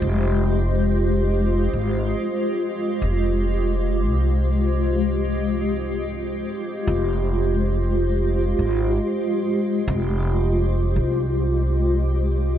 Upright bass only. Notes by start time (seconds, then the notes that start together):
0.02 F1
1.73 G#1
3.02 F1
4.10 C2
6.87 F1
8.59 G#1
9.88 F1
10.96 C2